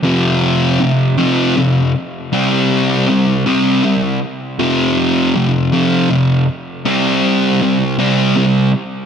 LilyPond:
\new Staff \with { instrumentName = "Distorted electric guitar" } { \clef bass \time 6/8 \key f \lydian \tempo 4. = 53 <f, c f>4 <f, c>8 <f, c f>8 <f, c>8 r8 | <c g c'>4 <c g>8 <c g c'>8 <c g>8 r8 | <f, c f>4 <f, c>8 <f, c f>8 <f, c>8 r8 | <c g c'>4 <c g>8 <c g c'>8 <c g>8 r8 | }